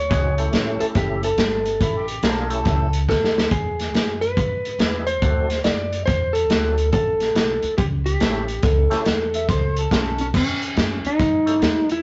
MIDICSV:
0, 0, Header, 1, 7, 480
1, 0, Start_track
1, 0, Tempo, 426136
1, 118, Time_signature, 4, 2, 24, 8
1, 13540, End_track
2, 0, Start_track
2, 0, Title_t, "Electric slide guitar"
2, 0, Program_c, 0, 29
2, 0, Note_on_c, 0, 73, 91
2, 906, Note_on_c, 0, 69, 83
2, 938, Note_off_c, 0, 73, 0
2, 962, Note_off_c, 0, 69, 0
2, 1088, Note_on_c, 0, 67, 89
2, 1398, Note_off_c, 0, 67, 0
2, 1402, Note_on_c, 0, 69, 78
2, 2310, Note_off_c, 0, 69, 0
2, 3485, Note_on_c, 0, 69, 88
2, 3957, Note_off_c, 0, 69, 0
2, 3961, Note_on_c, 0, 68, 91
2, 4746, Note_on_c, 0, 71, 99
2, 4774, Note_off_c, 0, 68, 0
2, 5702, Note_off_c, 0, 71, 0
2, 5707, Note_on_c, 0, 72, 105
2, 6352, Note_off_c, 0, 72, 0
2, 6357, Note_on_c, 0, 74, 93
2, 6817, Note_off_c, 0, 74, 0
2, 6821, Note_on_c, 0, 72, 103
2, 7131, Note_on_c, 0, 69, 95
2, 7151, Note_off_c, 0, 72, 0
2, 7789, Note_off_c, 0, 69, 0
2, 7802, Note_on_c, 0, 69, 95
2, 8756, Note_off_c, 0, 69, 0
2, 8760, Note_on_c, 0, 67, 93
2, 8844, Note_off_c, 0, 67, 0
2, 9076, Note_on_c, 0, 67, 77
2, 9723, Note_on_c, 0, 69, 82
2, 9742, Note_off_c, 0, 67, 0
2, 11117, Note_off_c, 0, 69, 0
2, 11183, Note_on_c, 0, 61, 92
2, 11462, Note_off_c, 0, 61, 0
2, 11501, Note_on_c, 0, 61, 91
2, 11557, Note_off_c, 0, 61, 0
2, 11675, Note_on_c, 0, 61, 99
2, 12464, Note_on_c, 0, 63, 102
2, 12472, Note_off_c, 0, 61, 0
2, 13421, Note_off_c, 0, 63, 0
2, 13425, Note_on_c, 0, 64, 101
2, 13540, Note_off_c, 0, 64, 0
2, 13540, End_track
3, 0, Start_track
3, 0, Title_t, "Harmonica"
3, 0, Program_c, 1, 22
3, 2043, Note_on_c, 1, 64, 88
3, 2195, Note_off_c, 1, 64, 0
3, 2217, Note_on_c, 1, 64, 54
3, 2217, Note_on_c, 1, 67, 77
3, 2305, Note_off_c, 1, 64, 0
3, 2518, Note_off_c, 1, 67, 0
3, 2532, Note_on_c, 1, 60, 52
3, 2532, Note_on_c, 1, 64, 52
3, 2532, Note_on_c, 1, 69, 74
3, 2629, Note_off_c, 1, 64, 0
3, 2630, Note_off_c, 1, 60, 0
3, 2835, Note_off_c, 1, 69, 0
3, 2861, Note_on_c, 1, 69, 92
3, 3389, Note_off_c, 1, 69, 0
3, 10538, Note_on_c, 1, 76, 87
3, 10684, Note_off_c, 1, 76, 0
3, 10691, Note_on_c, 1, 72, 79
3, 10988, Note_off_c, 1, 72, 0
3, 11026, Note_on_c, 1, 69, 81
3, 11173, Note_off_c, 1, 69, 0
3, 11194, Note_on_c, 1, 60, 65
3, 11194, Note_on_c, 1, 64, 65
3, 11194, Note_on_c, 1, 69, 93
3, 11270, Note_off_c, 1, 64, 0
3, 11286, Note_off_c, 1, 60, 0
3, 11562, Note_off_c, 1, 69, 0
3, 13540, End_track
4, 0, Start_track
4, 0, Title_t, "Tonewheel organ"
4, 0, Program_c, 2, 16
4, 103, Note_on_c, 2, 56, 65
4, 109, Note_on_c, 2, 60, 60
4, 114, Note_on_c, 2, 63, 59
4, 115, Note_on_c, 2, 66, 61
4, 116, Note_on_c, 2, 68, 70
4, 391, Note_off_c, 2, 56, 0
4, 394, Note_off_c, 2, 60, 0
4, 396, Note_off_c, 2, 63, 0
4, 397, Note_off_c, 2, 66, 0
4, 397, Note_off_c, 2, 68, 0
4, 424, Note_on_c, 2, 57, 73
4, 431, Note_on_c, 2, 61, 67
4, 432, Note_on_c, 2, 64, 67
4, 432, Note_on_c, 2, 67, 66
4, 432, Note_on_c, 2, 69, 79
4, 1454, Note_off_c, 2, 57, 0
4, 1457, Note_off_c, 2, 61, 0
4, 1458, Note_off_c, 2, 64, 0
4, 1458, Note_off_c, 2, 67, 0
4, 1458, Note_off_c, 2, 69, 0
4, 2511, Note_on_c, 2, 62, 60
4, 2516, Note_on_c, 2, 58, 70
4, 2518, Note_on_c, 2, 68, 60
4, 2521, Note_on_c, 2, 65, 57
4, 2522, Note_on_c, 2, 70, 74
4, 2794, Note_off_c, 2, 62, 0
4, 2797, Note_off_c, 2, 58, 0
4, 2798, Note_off_c, 2, 68, 0
4, 2800, Note_off_c, 2, 65, 0
4, 2800, Note_off_c, 2, 70, 0
4, 2810, Note_on_c, 2, 57, 66
4, 2811, Note_on_c, 2, 61, 61
4, 2819, Note_on_c, 2, 64, 63
4, 2822, Note_on_c, 2, 67, 64
4, 2823, Note_on_c, 2, 69, 75
4, 3237, Note_off_c, 2, 57, 0
4, 3238, Note_off_c, 2, 61, 0
4, 3241, Note_off_c, 2, 64, 0
4, 3243, Note_off_c, 2, 67, 0
4, 3243, Note_off_c, 2, 69, 0
4, 5405, Note_on_c, 2, 59, 50
4, 5405, Note_on_c, 2, 62, 52
4, 5407, Note_on_c, 2, 56, 55
4, 5412, Note_on_c, 2, 64, 46
4, 5414, Note_on_c, 2, 68, 62
4, 5682, Note_off_c, 2, 56, 0
4, 5682, Note_off_c, 2, 59, 0
4, 5682, Note_off_c, 2, 62, 0
4, 5685, Note_off_c, 2, 64, 0
4, 5686, Note_off_c, 2, 68, 0
4, 5883, Note_on_c, 2, 57, 64
4, 5885, Note_on_c, 2, 60, 58
4, 5887, Note_on_c, 2, 62, 54
4, 5889, Note_on_c, 2, 69, 69
4, 5891, Note_on_c, 2, 66, 61
4, 6161, Note_off_c, 2, 57, 0
4, 6162, Note_off_c, 2, 60, 0
4, 6163, Note_off_c, 2, 62, 0
4, 6164, Note_off_c, 2, 69, 0
4, 6165, Note_off_c, 2, 66, 0
4, 7317, Note_on_c, 2, 57, 78
4, 7320, Note_on_c, 2, 60, 65
4, 7322, Note_on_c, 2, 62, 69
4, 7328, Note_on_c, 2, 66, 73
4, 7329, Note_on_c, 2, 69, 81
4, 7598, Note_off_c, 2, 57, 0
4, 7600, Note_off_c, 2, 60, 0
4, 7601, Note_off_c, 2, 62, 0
4, 7604, Note_off_c, 2, 66, 0
4, 7604, Note_off_c, 2, 69, 0
4, 9240, Note_on_c, 2, 57, 66
4, 9244, Note_on_c, 2, 61, 61
4, 9245, Note_on_c, 2, 67, 64
4, 9247, Note_on_c, 2, 64, 62
4, 9254, Note_on_c, 2, 69, 73
4, 9520, Note_off_c, 2, 57, 0
4, 9522, Note_off_c, 2, 61, 0
4, 9523, Note_off_c, 2, 67, 0
4, 9524, Note_off_c, 2, 64, 0
4, 9527, Note_off_c, 2, 69, 0
4, 10026, Note_on_c, 2, 57, 83
4, 10031, Note_on_c, 2, 61, 79
4, 10031, Note_on_c, 2, 64, 70
4, 10037, Note_on_c, 2, 67, 76
4, 10040, Note_on_c, 2, 69, 94
4, 10180, Note_off_c, 2, 57, 0
4, 10183, Note_off_c, 2, 61, 0
4, 10183, Note_off_c, 2, 64, 0
4, 10186, Note_off_c, 2, 67, 0
4, 10188, Note_off_c, 2, 69, 0
4, 12910, Note_on_c, 2, 61, 52
4, 12912, Note_on_c, 2, 57, 64
4, 12914, Note_on_c, 2, 64, 53
4, 12919, Note_on_c, 2, 69, 64
4, 12920, Note_on_c, 2, 67, 56
4, 13062, Note_off_c, 2, 61, 0
4, 13063, Note_off_c, 2, 57, 0
4, 13064, Note_off_c, 2, 64, 0
4, 13067, Note_off_c, 2, 67, 0
4, 13067, Note_off_c, 2, 69, 0
4, 13540, End_track
5, 0, Start_track
5, 0, Title_t, "Upright bass"
5, 0, Program_c, 3, 32
5, 118, Note_on_c, 3, 37, 91
5, 584, Note_off_c, 3, 37, 0
5, 591, Note_on_c, 3, 33, 89
5, 884, Note_off_c, 3, 33, 0
5, 1073, Note_on_c, 3, 30, 79
5, 1540, Note_off_c, 3, 30, 0
5, 1552, Note_on_c, 3, 31, 89
5, 2020, Note_off_c, 3, 31, 0
5, 2034, Note_on_c, 3, 33, 88
5, 2501, Note_off_c, 3, 33, 0
5, 2511, Note_on_c, 3, 35, 85
5, 2979, Note_off_c, 3, 35, 0
5, 2995, Note_on_c, 3, 37, 84
5, 3461, Note_off_c, 3, 37, 0
5, 3474, Note_on_c, 3, 38, 78
5, 3941, Note_off_c, 3, 38, 0
5, 3957, Note_on_c, 3, 40, 91
5, 4423, Note_off_c, 3, 40, 0
5, 4434, Note_on_c, 3, 42, 84
5, 4901, Note_off_c, 3, 42, 0
5, 4922, Note_on_c, 3, 44, 86
5, 5386, Note_off_c, 3, 44, 0
5, 5391, Note_on_c, 3, 40, 87
5, 5860, Note_off_c, 3, 40, 0
5, 5878, Note_on_c, 3, 38, 86
5, 6344, Note_off_c, 3, 38, 0
5, 6366, Note_on_c, 3, 42, 86
5, 6828, Note_off_c, 3, 42, 0
5, 6846, Note_on_c, 3, 40, 89
5, 7308, Note_off_c, 3, 40, 0
5, 7323, Note_on_c, 3, 38, 92
5, 7787, Note_off_c, 3, 38, 0
5, 7805, Note_on_c, 3, 33, 86
5, 8268, Note_off_c, 3, 33, 0
5, 8279, Note_on_c, 3, 35, 85
5, 8569, Note_off_c, 3, 35, 0
5, 8767, Note_on_c, 3, 37, 88
5, 9229, Note_off_c, 3, 37, 0
5, 9251, Note_on_c, 3, 33, 85
5, 9711, Note_off_c, 3, 33, 0
5, 9723, Note_on_c, 3, 37, 86
5, 10011, Note_off_c, 3, 37, 0
5, 10206, Note_on_c, 3, 40, 88
5, 10669, Note_off_c, 3, 40, 0
5, 10687, Note_on_c, 3, 37, 84
5, 11149, Note_off_c, 3, 37, 0
5, 11167, Note_on_c, 3, 35, 84
5, 11629, Note_off_c, 3, 35, 0
5, 11645, Note_on_c, 3, 40, 90
5, 12108, Note_off_c, 3, 40, 0
5, 12126, Note_on_c, 3, 42, 91
5, 12413, Note_off_c, 3, 42, 0
5, 12609, Note_on_c, 3, 43, 88
5, 13070, Note_off_c, 3, 43, 0
5, 13083, Note_on_c, 3, 40, 83
5, 13540, Note_off_c, 3, 40, 0
5, 13540, End_track
6, 0, Start_track
6, 0, Title_t, "Muted upright bass strokes"
6, 914, Note_on_c, 9, 29, 39
6, 1026, Note_off_c, 9, 29, 0
6, 8594, Note_on_c, 9, 29, 42
6, 8707, Note_off_c, 9, 29, 0
6, 12444, Note_on_c, 9, 29, 38
6, 12556, Note_off_c, 9, 29, 0
6, 13540, End_track
7, 0, Start_track
7, 0, Title_t, "Drums"
7, 122, Note_on_c, 9, 36, 116
7, 125, Note_on_c, 9, 42, 78
7, 134, Note_on_c, 9, 38, 32
7, 234, Note_off_c, 9, 36, 0
7, 237, Note_off_c, 9, 42, 0
7, 246, Note_off_c, 9, 38, 0
7, 429, Note_on_c, 9, 42, 55
7, 541, Note_off_c, 9, 42, 0
7, 596, Note_on_c, 9, 42, 75
7, 605, Note_on_c, 9, 38, 98
7, 709, Note_off_c, 9, 42, 0
7, 718, Note_off_c, 9, 38, 0
7, 906, Note_on_c, 9, 42, 60
7, 1018, Note_off_c, 9, 42, 0
7, 1070, Note_on_c, 9, 42, 80
7, 1075, Note_on_c, 9, 36, 106
7, 1079, Note_on_c, 9, 38, 31
7, 1182, Note_off_c, 9, 42, 0
7, 1187, Note_off_c, 9, 36, 0
7, 1191, Note_off_c, 9, 38, 0
7, 1386, Note_on_c, 9, 42, 62
7, 1499, Note_off_c, 9, 42, 0
7, 1551, Note_on_c, 9, 42, 87
7, 1560, Note_on_c, 9, 38, 112
7, 1664, Note_off_c, 9, 42, 0
7, 1673, Note_off_c, 9, 38, 0
7, 1865, Note_on_c, 9, 42, 62
7, 1977, Note_off_c, 9, 42, 0
7, 2035, Note_on_c, 9, 36, 106
7, 2036, Note_on_c, 9, 42, 90
7, 2148, Note_off_c, 9, 36, 0
7, 2148, Note_off_c, 9, 42, 0
7, 2343, Note_on_c, 9, 42, 66
7, 2456, Note_off_c, 9, 42, 0
7, 2509, Note_on_c, 9, 42, 80
7, 2518, Note_on_c, 9, 38, 108
7, 2622, Note_off_c, 9, 42, 0
7, 2631, Note_off_c, 9, 38, 0
7, 2820, Note_on_c, 9, 42, 64
7, 2933, Note_off_c, 9, 42, 0
7, 2987, Note_on_c, 9, 42, 86
7, 2993, Note_on_c, 9, 36, 110
7, 2996, Note_on_c, 9, 38, 31
7, 3100, Note_off_c, 9, 42, 0
7, 3106, Note_off_c, 9, 36, 0
7, 3109, Note_off_c, 9, 38, 0
7, 3302, Note_on_c, 9, 42, 69
7, 3415, Note_off_c, 9, 42, 0
7, 3477, Note_on_c, 9, 36, 79
7, 3488, Note_on_c, 9, 38, 59
7, 3590, Note_off_c, 9, 36, 0
7, 3601, Note_off_c, 9, 38, 0
7, 3654, Note_on_c, 9, 38, 69
7, 3766, Note_off_c, 9, 38, 0
7, 3809, Note_on_c, 9, 38, 96
7, 3921, Note_off_c, 9, 38, 0
7, 3954, Note_on_c, 9, 42, 82
7, 3958, Note_on_c, 9, 36, 109
7, 4067, Note_off_c, 9, 42, 0
7, 4070, Note_off_c, 9, 36, 0
7, 4274, Note_on_c, 9, 42, 59
7, 4283, Note_on_c, 9, 38, 33
7, 4387, Note_off_c, 9, 42, 0
7, 4396, Note_off_c, 9, 38, 0
7, 4444, Note_on_c, 9, 42, 71
7, 4453, Note_on_c, 9, 38, 101
7, 4556, Note_off_c, 9, 42, 0
7, 4565, Note_off_c, 9, 38, 0
7, 4753, Note_on_c, 9, 42, 58
7, 4865, Note_off_c, 9, 42, 0
7, 4923, Note_on_c, 9, 36, 112
7, 4926, Note_on_c, 9, 42, 75
7, 5035, Note_off_c, 9, 36, 0
7, 5038, Note_off_c, 9, 42, 0
7, 5240, Note_on_c, 9, 42, 60
7, 5353, Note_off_c, 9, 42, 0
7, 5400, Note_on_c, 9, 42, 74
7, 5409, Note_on_c, 9, 38, 106
7, 5512, Note_off_c, 9, 42, 0
7, 5521, Note_off_c, 9, 38, 0
7, 5710, Note_on_c, 9, 42, 61
7, 5823, Note_off_c, 9, 42, 0
7, 5880, Note_on_c, 9, 42, 83
7, 5882, Note_on_c, 9, 36, 104
7, 5993, Note_off_c, 9, 42, 0
7, 5995, Note_off_c, 9, 36, 0
7, 6195, Note_on_c, 9, 42, 62
7, 6204, Note_on_c, 9, 38, 32
7, 6307, Note_off_c, 9, 42, 0
7, 6316, Note_off_c, 9, 38, 0
7, 6354, Note_on_c, 9, 42, 77
7, 6363, Note_on_c, 9, 38, 107
7, 6467, Note_off_c, 9, 42, 0
7, 6476, Note_off_c, 9, 38, 0
7, 6674, Note_on_c, 9, 42, 66
7, 6787, Note_off_c, 9, 42, 0
7, 6838, Note_on_c, 9, 42, 85
7, 6845, Note_on_c, 9, 36, 105
7, 6847, Note_on_c, 9, 38, 31
7, 6951, Note_off_c, 9, 42, 0
7, 6958, Note_off_c, 9, 36, 0
7, 6960, Note_off_c, 9, 38, 0
7, 7152, Note_on_c, 9, 42, 68
7, 7265, Note_off_c, 9, 42, 0
7, 7321, Note_on_c, 9, 42, 81
7, 7330, Note_on_c, 9, 38, 113
7, 7433, Note_off_c, 9, 42, 0
7, 7442, Note_off_c, 9, 38, 0
7, 7634, Note_on_c, 9, 42, 60
7, 7747, Note_off_c, 9, 42, 0
7, 7802, Note_on_c, 9, 42, 90
7, 7807, Note_on_c, 9, 36, 115
7, 7915, Note_off_c, 9, 42, 0
7, 7919, Note_off_c, 9, 36, 0
7, 8113, Note_on_c, 9, 42, 58
7, 8122, Note_on_c, 9, 38, 29
7, 8226, Note_off_c, 9, 42, 0
7, 8235, Note_off_c, 9, 38, 0
7, 8284, Note_on_c, 9, 42, 76
7, 8293, Note_on_c, 9, 38, 103
7, 8397, Note_off_c, 9, 42, 0
7, 8406, Note_off_c, 9, 38, 0
7, 8589, Note_on_c, 9, 42, 59
7, 8702, Note_off_c, 9, 42, 0
7, 8763, Note_on_c, 9, 42, 78
7, 8767, Note_on_c, 9, 36, 113
7, 8876, Note_off_c, 9, 42, 0
7, 8880, Note_off_c, 9, 36, 0
7, 9081, Note_on_c, 9, 42, 60
7, 9193, Note_off_c, 9, 42, 0
7, 9240, Note_on_c, 9, 42, 79
7, 9249, Note_on_c, 9, 38, 112
7, 9353, Note_off_c, 9, 42, 0
7, 9362, Note_off_c, 9, 38, 0
7, 9554, Note_on_c, 9, 42, 57
7, 9667, Note_off_c, 9, 42, 0
7, 9716, Note_on_c, 9, 42, 81
7, 9724, Note_on_c, 9, 36, 112
7, 9725, Note_on_c, 9, 38, 31
7, 9829, Note_off_c, 9, 42, 0
7, 9836, Note_off_c, 9, 36, 0
7, 9838, Note_off_c, 9, 38, 0
7, 10036, Note_on_c, 9, 42, 60
7, 10045, Note_on_c, 9, 38, 32
7, 10149, Note_off_c, 9, 42, 0
7, 10158, Note_off_c, 9, 38, 0
7, 10200, Note_on_c, 9, 42, 78
7, 10209, Note_on_c, 9, 38, 102
7, 10312, Note_off_c, 9, 42, 0
7, 10321, Note_off_c, 9, 38, 0
7, 10520, Note_on_c, 9, 42, 65
7, 10633, Note_off_c, 9, 42, 0
7, 10687, Note_on_c, 9, 36, 104
7, 10688, Note_on_c, 9, 42, 90
7, 10697, Note_on_c, 9, 38, 30
7, 10799, Note_off_c, 9, 36, 0
7, 10800, Note_off_c, 9, 42, 0
7, 10809, Note_off_c, 9, 38, 0
7, 10999, Note_on_c, 9, 42, 64
7, 11112, Note_off_c, 9, 42, 0
7, 11166, Note_on_c, 9, 36, 76
7, 11169, Note_on_c, 9, 42, 84
7, 11178, Note_on_c, 9, 38, 110
7, 11279, Note_off_c, 9, 36, 0
7, 11282, Note_off_c, 9, 42, 0
7, 11291, Note_off_c, 9, 38, 0
7, 11471, Note_on_c, 9, 42, 66
7, 11584, Note_off_c, 9, 42, 0
7, 11646, Note_on_c, 9, 49, 103
7, 11647, Note_on_c, 9, 36, 108
7, 11655, Note_on_c, 9, 38, 31
7, 11759, Note_off_c, 9, 49, 0
7, 11760, Note_off_c, 9, 36, 0
7, 11768, Note_off_c, 9, 38, 0
7, 11966, Note_on_c, 9, 42, 61
7, 12078, Note_off_c, 9, 42, 0
7, 12128, Note_on_c, 9, 42, 73
7, 12137, Note_on_c, 9, 38, 111
7, 12241, Note_off_c, 9, 42, 0
7, 12250, Note_off_c, 9, 38, 0
7, 12443, Note_on_c, 9, 42, 58
7, 12555, Note_off_c, 9, 42, 0
7, 12609, Note_on_c, 9, 42, 77
7, 12611, Note_on_c, 9, 36, 105
7, 12618, Note_on_c, 9, 38, 32
7, 12722, Note_off_c, 9, 42, 0
7, 12723, Note_off_c, 9, 36, 0
7, 12731, Note_off_c, 9, 38, 0
7, 12921, Note_on_c, 9, 42, 59
7, 13034, Note_off_c, 9, 42, 0
7, 13088, Note_on_c, 9, 42, 73
7, 13097, Note_on_c, 9, 38, 110
7, 13200, Note_off_c, 9, 42, 0
7, 13209, Note_off_c, 9, 38, 0
7, 13398, Note_on_c, 9, 42, 61
7, 13511, Note_off_c, 9, 42, 0
7, 13540, End_track
0, 0, End_of_file